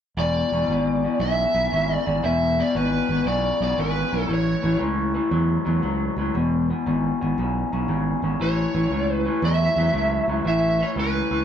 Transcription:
0.17 fingered electric bass E1, clean electric guitar E2 B2, lead electric guitar D5
0.52 fingered electric bass E1, clean electric guitar E2 B2
0.68 fingered electric bass G#1, clean electric guitar E2 B2
1.04 clean electric guitar E2 B2
1.19 fingered electric bass B1, clean electric guitar E2 C#3, lead electric guitar E5
1.54 fingered electric bass B1, clean electric guitar E2 C#3
1.72 fingered electric bass G#1, clean electric guitar E2 C#3
1.95 lead electric guitar D5
2.06 fingered electric bass G#1, clean electric guitar E2 C#3
2.23 fingered electric bass E1, clean electric guitar E2 B2, lead electric guitar E5
2.59 clean electric guitar E2 B2, lead electric guitar D5
2.75 fingered electric bass G#1, clean electric guitar E2 B2, lead electric guitar B4
3.09 fingered electric bass G#1, clean electric guitar E2 B2
3.26 fingered electric bass B1, clean electric guitar E2 C#3, lead electric guitar D5
3.60 fingered electric bass B1, clean electric guitar E2 C#3, lead electric guitar D5
3.78 fingered electric bass G#1, clean electric guitar E2 C#3, lead electric guitar B4
4.12 fingered electric bass B1, clean electric guitar E2 C#3
4.27 fingered electric bass A1, clean electric guitar A2 E3
4.34 lead electric guitar C#5
4.62 fingered electric bass A1, clean electric guitar A2 E3
4.79 fingered electric bass C#2, clean electric guitar A2 E3
5.14 clean electric guitar A2 E3
5.31 fingered electric bass E2, clean electric guitar A2 F#3
5.65 fingered electric bass E2, clean electric guitar A2 F#3
5.82 fingered electric bass C#2, clean electric guitar A2 F#3
6.16 fingered electric bass C#2, clean electric guitar A2 F#3
6.34 fingered electric bass E1, clean electric guitar E2 B2
6.70 clean electric guitar E2 B2
6.86 fingered electric bass G#1, clean electric guitar E2 B2
7.21 fingered electric bass G#1, clean electric guitar E2 B2
7.38 fingered electric bass B1, clean electric guitar E2 C#3
7.72 fingered electric bass B1, clean electric guitar E2 C#3
7.88 fingered electric bass G#1, clean electric guitar E2 C#3
8.22 fingered electric bass G#1, clean electric guitar E2 C#3
8.40 fingered electric bass A1, clean electric guitar A2 E3, lead electric guitar C#5
8.74 fingered electric bass A1, clean electric guitar A2 E3
8.90 fingered electric bass C#2, clean electric guitar A2 E3
9.15 lead electric guitar B4
9.26 clean electric guitar A2 E3
9.42 fingered electric bass E2, clean electric guitar A2 F#3, lead electric guitar E5
9.76 fingered electric bass E2, clean electric guitar A2 F#3
9.93 fingered electric bass C#2, clean electric guitar A2 F#3
10.28 fingered electric bass C#2, clean electric guitar A2 F#3
10.44 fingered electric bass A1, clean electric guitar A2 E3, lead electric guitar E5
10.80 clean electric guitar A2 E3, lead electric guitar C#5
10.96 fingered electric bass C#2, clean electric guitar A2 E3, lead electric guitar B4
11.30 fingered electric bass C#2, clean electric guitar A2 E3

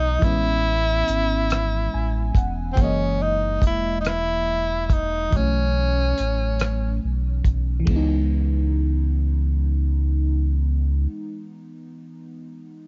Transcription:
Already playing: sub bass B1, fm electric piano E3 G#3 B3 D#4, tenor saxophone D#4
0.19 fm electric piano E3 G#3, kick, closed hi-hat
0.23 sub bass A1, fm electric piano B3 C#4, tenor saxophone E4
1.08 sub bass G#1, closed hi-hat
1.50 cross-stick, closed hi-hat
1.94 sub bass A1, fm electric piano G#5
2.35 sub bass E1, fm electric piano F#5, kick, closed hi-hat
2.73 fm electric piano E3, tenor saxophone C4
2.77 sub bass F#1, fm electric piano G#3 A#3, tenor saxophone C#4, kick, closed hi-hat
2.84 fm electric piano D#5
3.23 tenor saxophone D#4
3.62 sub bass E1, kick, closed hi-hat
3.67 tenor saxophone E4
4.01 tenor saxophone D#4, closed hi-hat
4.07 tenor saxophone E4, cross-stick
4.86 tenor saxophone E4, kick, closed hi-hat
4.93 tenor saxophone D#4
5.30 sub bass B1, fm electric piano E3 F#3, kick, closed hi-hat
5.36 fm electric piano A3 C#4, tenor saxophone C#4
6.18 sub bass A1, closed hi-hat
6.59 cross-stick, closed hi-hat
7.04 sub bass B1
7.44 sub bass B1, kick, closed hi-hat
7.80 fm electric piano E3
7.85 sub bass C#2, fm electric piano G#3, kick, ride
7.91 fm electric piano B3
7.96 fm electric piano D#4

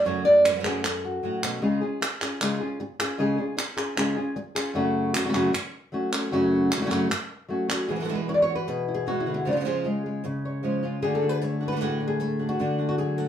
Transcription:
0.05 nylon-string guitar F#2 C#3 F#3 A3 C#4 F#4 C#5
0.25 nylon-string guitar F#3 A3 C#4 F#4 D5
0.44 nylon-string guitar F#3 A3 C#4 F#4 B4, clap
0.51 nylon-string guitar C#3 F#3 A3 C#4 F#4
0.55 nylon-string guitar C#3 F#3 A3 C#4 F#4
0.60 nylon-string guitar C#3 F#3 A3 C#4 F#4
0.64 nylon-string guitar F#2 C#3 F#3 A3 C#4 F#4 G#4, clap
0.83 nylon-string guitar A4, muted nylon-string guitar stroke, clap
1.05 nylon-string guitar F#4
1.23 nylon-string guitar A2 F#3 A3 C#4 F#4
1.43 nylon-string guitar B2 F#3 A3 C#4 F#4, clap
1.62 nylon-string guitar C#3 G#3 C#4 F4 G#4
1.81 nylon-string guitar C#4 F4 G#4
2.01 muted nylon-string guitar stroke, clap
2.21 nylon-string guitar C#4 F4 G#4, clap
2.41 nylon-string guitar C#3 G#3 C#4 F4 G#4, clap
2.61 nylon-string guitar C#4 F4 G#4
2.80 muted nylon-string guitar stroke
2.99 nylon-string guitar C#4 F4 G#4, clap
3.18 nylon-string guitar C#3 G#3 C#4 F4 G#4
3.38 nylon-string guitar C#4 F4 G#4
3.57 muted nylon-string guitar stroke, clap
3.77 nylon-string guitar C#4 F4 G#4, clap
3.96 nylon-string guitar C#3 G#3 C#4 F4 G#4, clap
4.16 nylon-string guitar C#4 F4 G#4
4.36 muted nylon-string guitar stroke
4.55 nylon-string guitar C#4 F4 G#4, clap
4.74 nylon-string guitar F#2 C#3 F#3 A3 C#4 F#4
5.14 nylon-string guitar F#3 A3 C#4 F#4, clap
5.24 nylon-string guitar C#3 F#3 A3 C#4 F#4
5.29 nylon-string guitar C#3 F#3 A3 C#4 F#4
5.33 nylon-string guitar F#2 C#3 F#3 A3 C#4 F#4, clap
5.53 muted nylon-string guitar stroke, clap
5.92 nylon-string guitar F#3 A3 C#4 F#4
6.13 nylon-string guitar F#3 A3 C#4 F#4, clap
6.32 nylon-string guitar F#2 C#3 F#3 A3 C#4 F#4
6.70 nylon-string guitar F#3 A3 C#4 F#4, clap
6.76 nylon-string guitar C#3 F#3 A3 C#4 F#4
6.81 nylon-string guitar C#3 F#3 A3 C#4 F#4
6.85 nylon-string guitar C#3 F#3 A3 C#4 F#4
6.90 nylon-string guitar F#2 C#3 F#3 A3 C#4 F#4, clap
7.09 muted nylon-string guitar stroke, clap
7.48 nylon-string guitar F#3 A3 C#4 F#4
7.69 nylon-string guitar F#3 A3 C#4 F#4, clap
7.89 nylon-string guitar E2 B2 E3 G#3 B3 F#4 G#4
7.95 nylon-string guitar B2 E3 G#3 B3 F#4
8.00 nylon-string guitar B2 E3 G#3 B3 F#4 A4
8.05 nylon-string guitar B2 E3 G#3 B3 F#4
8.09 nylon-string guitar E2 B2 E3 G#3 B3 E4 F#4
8.15 nylon-string guitar B4
8.28 nylon-string guitar E3 G#3 B3 E4 F#4 C#5
8.34 nylon-string guitar D5
8.42 nylon-string guitar C#5
8.50 nylon-string guitar F#4
8.55 nylon-string guitar B4
8.67 nylon-string guitar B2 G#4, muted nylon-string guitar stroke
8.88 nylon-string guitar E4
8.94 nylon-string guitar G#4
9.07 nylon-string guitar E3 G#3 B3 F#4
9.20 nylon-string guitar E4
9.26 nylon-string guitar D3 E3 G#3 B3 F#4
9.34 nylon-string guitar E4
9.45 nylon-string guitar C#3 F3 G#3 C#4 D4 F4
9.51 nylon-string guitar F3 G#3 C#4 F4
9.56 nylon-string guitar F3 G#3 C#4 F4
9.60 nylon-string guitar F3 G#3 C#4 F4
9.65 nylon-string guitar C#3 F3 G#3 C#4 F4 G#4
9.84 nylon-string guitar G#3 C#4 F4
10.06 nylon-string guitar G#3
10.24 nylon-string guitar C#3, muted nylon-string guitar stroke
10.45 nylon-string guitar C#5
10.63 nylon-string guitar F3 G#3 C#4 F4
10.83 nylon-string guitar G#3 C#4 F4
11.02 nylon-string guitar D3 A3 D4 F#4 G#4
11.15 nylon-string guitar A4
11.22 nylon-string guitar A3 D4 F#4
11.29 nylon-string guitar B4
11.41 nylon-string guitar A3 C#5, muted nylon-string guitar stroke
11.61 nylon-string guitar A3 D4 F#4
11.68 nylon-string guitar D3 B4
11.72 nylon-string guitar D3 A3 D4 F#4
11.77 nylon-string guitar A3 D4 F#4
11.81 nylon-string guitar A2 D3 A3 D4 F#4 G#4
12.00 nylon-string guitar A3 D4 F#4
12.08 nylon-string guitar G#4
12.20 nylon-string guitar A3 A4, muted nylon-string guitar stroke
12.39 nylon-string guitar A3 D4 F#4
12.49 nylon-string guitar F#4
12.59 nylon-string guitar D3 A3 D4 F#4
12.79 nylon-string guitar A3 D4 F#4
12.89 nylon-string guitar F#4
12.98 nylon-string guitar F#3 G#4, muted nylon-string guitar stroke
13.18 nylon-string guitar A3 D4 F#4 A4

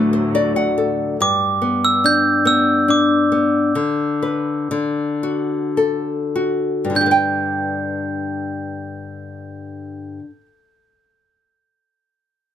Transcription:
Already playing: string section D2 A2 F#3, nylon-string guitar D3 A3 B4, glockenspiel D6
0.13 nylon-string guitar C5
0.35 nylon-string guitar F#4 D5
0.56 nylon-string guitar F#5
0.78 nylon-string guitar A4
1.20 nylon-string guitar G2, glockenspiel D6
1.62 nylon-string guitar B3
1.85 glockenspiel E6
2.04 nylon-string guitar D4, glockenspiel G6
2.45 nylon-string guitar B3, glockenspiel E6
2.88 nylon-string guitar D4, glockenspiel D6
3.32 nylon-string guitar B3
3.75 nylon-string guitar D3
4.22 nylon-string guitar B4
4.71 nylon-string guitar D3
5.23 nylon-string guitar F#4
5.77 nylon-string guitar A4
6.36 nylon-string guitar F#4
6.85 nylon-string guitar G2
6.90 nylon-string guitar D3
6.95 nylon-string guitar D4, glockenspiel G6
7.01 nylon-string guitar G4
7.06 nylon-string guitar B4
7.11 nylon-string guitar G5

